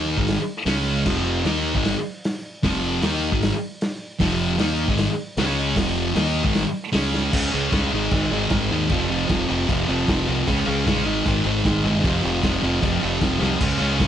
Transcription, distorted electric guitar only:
Already playing: D#3 A#3 D#4
0.17 G#2 D#3 G#3
0.66 C#3 G#3 C#4
1.05 F2 C3 F3
1.45 D#3 A#3 D#4
1.74 G#2 D#3 G#3
2.63 F2 C3 F3
3.03 D#3 A#3 D#4
3.31 G#2 D#3 G#3
4.20 F2 C3 F3
4.58 D#3 A#3 D#4
4.88 G#2 D#3 G#3
5.38 C#3 G#3 C#4
5.76 F2 C3 F3
6.15 D#3 A#3 D#4
6.43 G#2 D#3 G#3
6.92 C#3 G#3 C#4
7.32 C#3 G#3 C#4
7.52 C#3 G#3 C#4
7.71 C#3 G#3 C#4
7.92 G#2 D#3 G#3
8.12 G#2 D#3 G#3
8.32 G#2 D#3 G#3
8.50 G#2 D#3 G#3
8.71 G#2 D#3 G#3
8.90 F2 C3 F3
9.09 F2 C3 F3
9.28 F2 C3 F3
9.47 F2 C3 F3
9.68 F2 C3 F3
9.88 F2 C3 F3
10.07 F2 C3 F3
10.27 F2 C3 F3
10.48 C#3 G#3 C#4
10.66 C#3 G#3 C#4
10.85 C#3 G#3 C#4
11.05 G#2 D#3 G#3
11.26 G#2 D#3 G#3
11.45 G#2 D#3 G#3
11.65 G#2 D#3 G#3
11.84 G#2 D#3 G#3
12.02 F2 C3 F3
12.23 F2 C3 F3
12.43 F2 C3 F3
12.62 F2 C3 F3
12.81 F2 C3 F3
13.01 F2 C3 F3
13.21 F2 C3 F3
13.40 F2 C3 F3
13.60 C#3 G#3 C#4
13.78 C#3 G#3 C#4
13.97 C#3 G#3 C#4

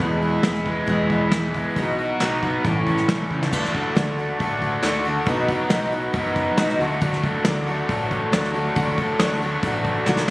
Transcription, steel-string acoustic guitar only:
0.00 E2 B2 E3 G#3 B3 E4
0.43 E3 G#3 B3 E4
0.66 E3 G#3 B3 E4
0.87 E2 B2 E3 G#3 B3 E4
1.32 E3 G#3 B3 E4
1.54 E3 G#3 B3 E4
1.76 B2 F#3 B3 D#4 F#4
2.20 F#3 B3 D#4 F#4
2.43 B3 D#4 F#4
2.65 A2 E3 G3 C#4 E4
3.08 E3 G3 C#4 E4
3.30 G3 C#4 E4
3.52 D3 A3 D4 F#4
3.74 A3 D4 F#4
3.96 D3 A3 D4 F#4
4.18 A3 D4 F#4
4.39 D3 A3 D4 F#4
4.83 D3 A3 D4 F#4
5.05 A3 D4 F#4
5.28 B2 F#3 B3 D#4 F#4
5.49 B3 D#4 F#4
5.70 B2 F#3 B3 D#4 F#4
5.92 B3 D#4 F#4
6.13 F#3 B3 D#4 F#4
6.58 B2 F#3 B3 D#4 F#4
6.80 A3 D4 F#4
7.01 D3 F#3 A3 D4 F#4
7.23 A3 D4 F#4
7.45 D3 F#3 A3 D4 F#4
7.67 A3 D4 F#4
7.89 F#3 A3 D4 F#4
8.32 D3 F#3 A3 D4 F#4
8.54 A3 D4 F#4
8.75 D3 F#3 A3 D4 F#4
8.97 A3 D4 F#4
9.20 D3 F#3 A3 D4 F#4
9.42 A3 D4 F#4
9.63 F#3 A3 D4 F#4
10.07 D3 F#3 A3 D4 F#4

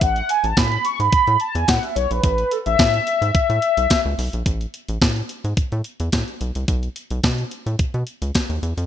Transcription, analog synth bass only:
0.01 A1
0.44 A1
0.57 A2
1.00 G#2
1.27 A2
1.55 E2
1.68 A2
1.96 B1
2.11 A#1
2.24 A1
2.66 A1
2.79 A2
3.22 G#2
3.35 A2
3.50 A2
3.77 B1
4.05 C#2
4.18 B1
4.33 A#1
4.46 A1
4.89 A1
5.01 A2
5.44 G#2
5.57 A2
5.72 A2
6.00 E2
6.13 A2
6.41 B1
6.55 C2
6.68 B1
7.11 B1
7.24 B2
7.66 A2
7.94 B2
8.22 C#2
8.49 D#2
8.63 E2
8.77 F2

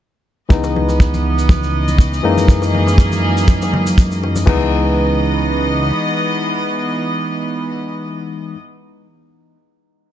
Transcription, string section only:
0.50 E3 B3 D#5
2.24 A#3 G#4
4.47 E3 B3 D#5

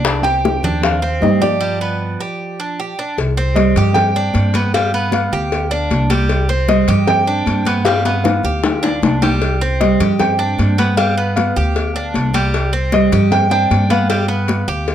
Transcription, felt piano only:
0.23 G5
0.83 F5
1.22 D#5
1.42 D5
3.56 D#5
3.94 G5
4.74 F5
5.14 F5
6.69 D#5
7.07 G5
7.85 F5
8.24 F5
9.81 D#5
10.20 G5
10.97 F5
11.36 F5
12.94 D#5
13.32 G5
13.51 G5
13.91 F5

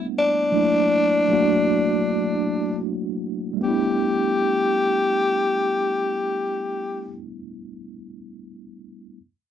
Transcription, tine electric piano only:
Already playing: G3 A3 A#3 B3 D4 F#5
0.52 F#3 A3 A#3 D4 E4
1.29 F#3 A3 A#3 D4
1.33 F#4
3.53 G3 A3
3.61 B3 D4
3.68 E4

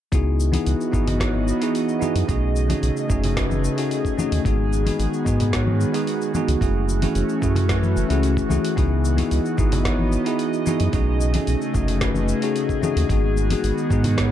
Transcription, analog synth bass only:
0.12 C#2
0.67 C#2
0.93 G#1
2.15 F#2
2.29 B1
2.83 B1
3.10 F#1
4.32 D#2
4.45 G#1
4.99 G#1
5.26 G#2
6.48 C#2
6.61 F#1
7.15 F#1
7.42 F#2
7.97 F#1
8.10 C#2
8.50 C#2
8.77 C#2
9.32 C#2
9.58 G#1
10.81 F#2
10.93 B1
11.48 B1
11.74 F#1
12.97 D#2
13.09 G#1
13.64 G#1
13.90 G#2

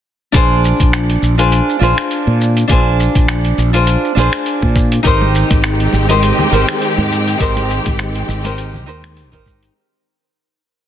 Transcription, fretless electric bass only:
0.34 A#1
0.80 A#1
1.22 A#1
1.81 A#1
2.27 A#2
2.70 A#1
3.16 A#1
3.58 A#1
4.17 A#1
4.62 A#2
5.05 G#1
5.51 G#1
5.93 G#1
6.52 G#1
6.98 G#2
7.40 G#1
7.86 G#1
8.29 G#1
8.87 D#2
9.33 G#1

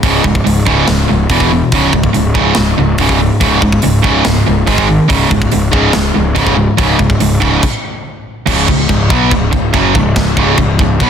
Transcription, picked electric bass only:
0.04 C#1
0.25 C#1
0.47 C#1
0.67 C#1
0.89 C#1
1.11 C#1
1.30 E1
1.73 C#1
1.93 C#1
2.17 C#1
2.36 C#1
2.58 C#1
2.79 C#1
2.99 C#1
3.41 C#1
3.63 C#1
3.86 C#1
4.05 C#1
4.27 C#1
4.48 C#1
4.68 G#1
5.11 C#1
5.31 C#1
5.55 C#1
5.74 C#1
5.96 C#1
6.17 C#1
6.37 C#1
6.79 C#1
6.99 C#1
7.22 C#1
7.42 C#1
8.48 C#1
8.69 C#1
8.89 C#1
9.11 B1
9.32 C#1
9.54 C#1
9.74 F#1
9.96 C#1
10.17 C#1
10.37 C#1
10.58 C#1
10.80 C#1
11.00 B1

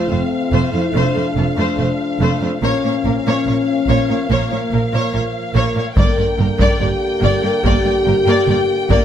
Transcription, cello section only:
0.11 F2
0.52 F2
0.73 F2
0.94 F2
1.16 F2
1.36 F2
1.57 F2
1.78 F2
2.21 F2
2.42 F2
2.62 A#2
2.83 A#2
3.05 A#2
3.26 A#2
3.47 A#2
3.88 A#2
4.09 A#2
4.30 A#2
4.51 A#2
4.72 A#2
4.93 A#2
5.13 A#2
5.55 A#2
5.76 A#2
5.96 G2
6.17 G2
6.38 G2
6.59 G2
6.79 G2
7.21 G2
7.43 G2
7.63 G2
7.84 G2
8.05 G2
8.26 G2
8.47 G2
8.89 G2

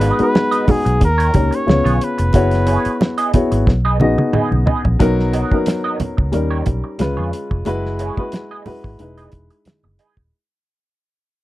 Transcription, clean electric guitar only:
0.01 D#4 F#4 B4 D#5
0.34 muted clean electric guitar stroke
0.51 D#4 F#4 B4 D#5
0.67 muted clean electric guitar stroke
0.85 muted clean electric guitar stroke
1.00 muted clean electric guitar stroke
1.18 A#3 D#4 G4 C#5
1.33 muted clean electric guitar stroke
1.51 muted clean electric guitar stroke
1.67 muted clean electric guitar stroke
1.84 B3 F4 G#4 C#5
2.00 muted clean electric guitar stroke
2.18 muted clean electric guitar stroke
2.67 B3 E4 G#4 C#5
3.00 muted clean electric guitar stroke
3.18 B3 E4 G#4 D#5
3.33 muted clean electric guitar stroke
3.52 muted clean electric guitar stroke
3.67 muted clean electric guitar stroke
3.85 D#4 G#4 B4 D#5
4.00 muted clean electric guitar stroke
4.18 muted clean electric guitar stroke
4.33 D#4 G#4 B4 D#5
4.51 muted clean electric guitar stroke
4.66 D#4 G#4 B4 D#5
4.84 muted clean electric guitar stroke
5.33 B3 F#4 A#4 D#5
5.66 muted clean electric guitar stroke
5.84 B3 F#4 A#4 D#5
6.17 muted clean electric guitar stroke
6.33 muted clean electric guitar stroke
6.50 A#3 D#4 G4 C#5
6.84 muted clean electric guitar stroke
6.99 muted clean electric guitar stroke
7.17 B3 F4 G#4 C#5
7.33 muted clean electric guitar stroke
7.51 muted clean electric guitar stroke
7.99 B3 E4 G#4 C#5
8.33 muted clean electric guitar stroke
8.51 B3 E4 G#4 D#5
8.66 muted clean electric guitar stroke
8.84 muted clean electric guitar stroke
8.99 muted clean electric guitar stroke
9.18 D#4 G#4 B4 D#5
9.51 muted clean electric guitar stroke
9.66 muted clean electric guitar stroke
9.84 muted clean electric guitar stroke
9.99 D#4 G#4 B4 D#5

